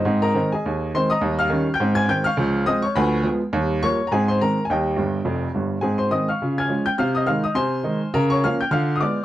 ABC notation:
X:1
M:4/4
L:1/16
Q:"Swing" 1/4=208
K:Ab
V:1 name="Upright piano"
[Ece]2 [Beb]4 [Aea]6 [cc']2 [ebe']2- | [ebe']2 [ff']4- [ff'] [gg']3 [aa']2 [gg']2 [fd'f']2- | [fd'f']4 [ee']2 [dd']2 [=Ba=b]4 z4 | z4 [dd']3 b [Aa]2 [cc']2 [Bb]3 a |
[Geg]12 z4 | [Aa]2 [cc']2 [ee']2 [fd'f']4 [af'a']4 [gg']2 | [ff']2 [ee']2 [ff']2 [ee']2 [cac']8 | [Bb]2 [dd']2 [ff']2 [gg']2 [ff']3 e' [=d=d']3 z |]
V:2 name="Upright piano" clef=bass
[A,,C]4 [E,A,C]4 E,,4 [E,A,C]4 | [E,,G,]4 [E,G,D]4 [A,,C]4 [E,A,C]4 | [D,,F,]4 [F,A,C]4 [=D,,F,]4 [F,A,=B,]4 | [E,,G,]4 [F,G,B,]4 [A,,C]4 [E,A,C]4 |
[E,,G,]4 [G,,,G,,]4 [F,,,F,,]4 [G,,,G,,]4 | [A,,C]4 [E,A,C]4 [D,F]4 [F,A,D]4 | C,4 [E,A,E]4 C,4 [E,A,E]4 | D,4 [F,B,D]4 [=D,F]4 [A,=B,F]4 |]